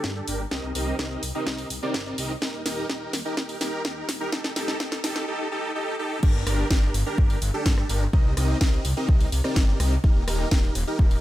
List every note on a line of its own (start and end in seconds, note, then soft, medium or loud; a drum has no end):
0.00 0.22 G2 medium
0.00 0.13 D4 medium
0.00 0.13 G4 medium
0.00 0.13 A4 loud
0.00 kick loud
0.00 snare medium
0.16 0.26 D4 medium
0.16 0.26 G4 medium
0.16 0.26 A4 loud
0.28 0.45 G1 loud
0.28 0.42 D4 medium
0.28 0.42 G4 medium
0.28 0.42 A#4 medium
0.28 open hi-hat loud
0.51 0.60 C2 medium
0.51 0.72 C4 medium
0.51 0.72 D#4 medium
0.51 0.72 G4 medium
0.51 0.72 A#4 medium
0.51 0.72 D#5 medium
0.51 kick loud
0.51 snare medium
0.63 0.72 C2 medium
0.75 0.93 C2 loud
0.75 0.96 C4 medium
0.75 0.96 D#4 medium
0.75 0.96 G4 medium
0.75 0.96 A#4 medium
0.75 0.96 D#5 loud
0.75 open hi-hat loud
0.99 1.17 C2 medium
0.99 1.22 C4 medium
0.99 1.22 D#4 medium
0.99 1.22 G4 medium
0.99 1.22 D#5 medium
0.99 kick loud
0.99 snare medium
1.23 1.32 C2 medium
1.23 open hi-hat loud
1.35 1.68 C4 medium
1.35 1.68 D#4 medium
1.35 1.68 G4 medium
1.35 1.68 A#4 medium
1.35 1.68 D#5 medium
1.47 1.64 C2 medium
1.47 kick loud
1.47 snare medium
1.58 open hi-hat medium
1.70 1.79 C2 medium
1.70 open hi-hat loud
1.82 2.03 C4 medium
1.82 2.03 D#4 medium
1.82 2.03 G4 medium
1.82 2.03 A#4 medium
1.82 2.03 D5 loud
1.94 2.12 G1 medium
1.94 kick loud
1.94 snare medium
2.06 2.16 C4 medium
2.06 2.16 D#4 medium
2.06 2.16 G4 medium
2.06 2.16 A#4 medium
2.06 2.16 D5 loud
2.18 2.36 C2 loud
2.18 2.32 C4 medium
2.18 2.32 D#4 medium
2.18 2.32 G4 medium
2.18 2.32 A#4 medium
2.18 2.32 D#5 medium
2.18 open hi-hat loud
2.42 2.51 D#1 loud
2.42 2.62 D#4 medium
2.42 2.62 G4 medium
2.42 2.62 A#4 medium
2.42 kick loud
2.42 snare medium
2.54 2.63 D#1 medium
2.66 2.83 D#1 loud
2.66 2.87 D#4 medium
2.66 2.87 G4 medium
2.66 2.87 A#4 loud
2.66 snare medium
2.66 open hi-hat loud
2.89 3.07 D#1 medium
2.89 3.12 D#4 medium
2.89 3.12 G4 medium
2.89 3.12 A#4 medium
2.89 kick loud
2.89 snare medium
3.13 3.22 D#1 medium
3.13 snare medium
3.13 open hi-hat loud
3.25 3.35 D#4 medium
3.25 3.35 G4 medium
3.25 3.35 A#4 medium
3.37 3.55 D#1 medium
3.37 3.57 G4 medium
3.37 3.57 A#4 medium
3.37 kick loud
3.37 snare medium
3.49 open hi-hat medium
3.61 3.70 D#1 medium
3.61 3.82 D#4 medium
3.61 3.82 G4 medium
3.61 3.82 A#4 loud
3.61 snare medium
3.61 open hi-hat loud
3.85 4.03 D#2 medium
3.85 4.08 D#4 medium
3.85 kick loud
3.85 snare medium
4.09 4.26 D#1 loud
4.09 snare medium
4.09 open hi-hat loud
4.20 4.30 D#4 medium
4.20 4.30 G4 medium
4.20 4.30 A#4 medium
4.32 4.41 F1 loud
4.32 4.53 D#4 medium
4.32 4.53 A4 loud
4.32 kick loud
4.32 snare medium
4.44 4.53 F1 medium
4.44 snare medium
4.56 4.74 F1 loud
4.56 4.77 D#4 loud
4.56 4.77 G4 medium
4.56 4.77 A4 loud
4.56 snare medium
4.56 open hi-hat loud
4.68 snare medium
4.80 4.98 F1 medium
4.80 5.00 D#4 medium
4.80 5.00 G4 medium
4.80 5.00 A4 loud
4.80 kick loud
4.80 snare medium
4.92 snare medium
5.04 5.13 F1 medium
5.04 5.25 D#4 loud
5.04 5.25 G4 medium
5.04 5.25 A4 loud
5.04 snare loud
5.04 open hi-hat loud
5.16 snare medium
5.28 5.48 D#4 medium
5.28 5.48 G4 medium
5.28 5.48 A4 loud
5.51 5.72 D#4 medium
5.51 5.72 G4 medium
5.51 5.72 A4 loud
5.75 5.96 D#4 medium
5.75 5.96 G4 medium
5.75 5.96 A4 loud
5.99 6.19 D#4 medium
5.99 6.19 G4 medium
5.99 6.19 A4 loud
6.23 6.32 G1 loud
6.23 6.43 D4 medium
6.23 6.43 G4 medium
6.23 6.43 A#4 loud
6.23 kick loud
6.23 crash loud
6.35 6.44 G1 medium
6.47 6.64 G1 loud
6.47 6.68 D4 loud
6.47 6.68 G4 medium
6.47 6.68 A#4 loud
6.47 cross-stick medium
6.47 open hi-hat loud
6.71 6.88 G1 medium
6.71 kick loud
6.71 snare loud
6.94 7.03 G1 medium
6.94 open hi-hat loud
7.06 7.39 D4 medium
7.06 7.39 G4 medium
7.06 7.39 A#4 medium
7.18 7.36 G1 medium
7.18 kick loud
7.30 open hi-hat medium
7.42 7.51 G1 medium
7.42 open hi-hat loud
7.54 7.75 D4 medium
7.54 7.75 G4 medium
7.54 7.75 A4 loud
7.66 7.83 G2 medium
7.66 kick loud
7.66 snare loud
7.78 7.88 D4 medium
7.78 7.88 G4 medium
7.78 7.88 A4 loud
7.78 cross-stick medium
7.89 8.07 G1 loud
7.89 8.04 D4 medium
7.89 8.04 G4 medium
7.89 8.04 A#4 medium
7.89 open hi-hat loud
8.13 8.22 C2 loud
8.13 8.34 C4 medium
8.13 8.34 D#4 medium
8.13 8.34 G4 medium
8.13 8.34 A#4 medium
8.13 8.34 D#5 loud
8.13 kick loud
8.25 8.34 C2 medium
8.37 8.55 C2 loud
8.37 8.58 C4 loud
8.37 8.58 D#4 medium
8.37 8.58 G4 medium
8.37 8.58 A#4 medium
8.37 8.58 D#5 loud
8.37 cross-stick medium
8.37 open hi-hat loud
8.61 8.79 C2 loud
8.61 8.84 C4 medium
8.61 8.84 D#4 medium
8.61 8.84 G4 medium
8.61 8.84 D#5 loud
8.61 kick loud
8.61 snare loud
8.85 8.94 C2 medium
8.85 open hi-hat loud
8.97 9.30 C4 medium
8.97 9.30 D#4 medium
8.97 9.30 G4 medium
8.97 9.30 A#4 medium
8.97 9.30 D#5 medium
9.09 9.26 C2 medium
9.09 kick loud
9.21 open hi-hat medium
9.32 9.41 C2 medium
9.32 open hi-hat loud
9.44 9.65 C4 medium
9.44 9.65 D#4 medium
9.44 9.65 G4 medium
9.44 9.65 A#4 medium
9.44 9.65 D5 loud
9.44 cross-stick medium
9.56 9.74 G1 medium
9.56 kick loud
9.56 snare loud
9.68 9.78 C4 medium
9.68 9.78 D#4 medium
9.68 9.78 G4 medium
9.68 9.78 A#4 medium
9.68 9.78 D5 loud
9.80 9.98 C2 loud
9.80 9.94 C4 medium
9.80 9.94 D#4 medium
9.80 9.94 G4 medium
9.80 9.94 A#4 medium
9.80 9.94 D#5 medium
9.80 cross-stick medium
9.80 open hi-hat loud
10.04 10.13 D#1 loud
10.04 10.24 D#4 medium
10.04 10.24 G4 medium
10.04 10.24 A#4 loud
10.04 kick loud
10.16 10.25 D#1 medium
10.28 10.45 D#1 loud
10.28 10.49 D#4 loud
10.28 10.49 G4 medium
10.28 10.49 A#4 loud
10.28 cross-stick medium
10.28 open hi-hat loud
10.51 10.69 D#1 loud
10.51 kick loud
10.51 snare loud
10.75 10.84 D#1 medium
10.75 open hi-hat loud
10.87 11.20 D#4 medium
10.87 11.20 G4 medium
10.87 11.20 A#4 medium
10.99 11.17 D#1 medium
10.99 kick loud
11.11 open hi-hat medium